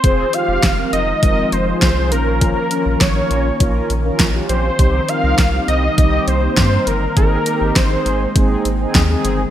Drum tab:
HH |xxxxxxxx|xxxxxxxx|xxxxxxxx|xxxxxxxx|
SD |--o---o-|--o---o-|--o---o-|--o---o-|
BD |o-o-o-o-|o-o-o-o-|o-o-o-o-|o-o-o-o-|